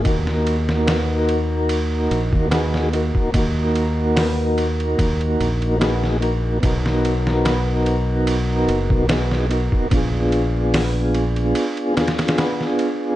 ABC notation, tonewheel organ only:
X:1
M:4/4
L:1/8
Q:1/4=73
K:Ebm
V:1 name="Tonewheel organ"
[B,EGB]6 [B,EGA] [B,EGB] | [B,EGB]6 [B,EGA] [B,EGB] | [=B,^D^F^A]6 [B,DF_A] [B,DF^A] | [C=DFA]4- [CDFA] [CDFA]3 |]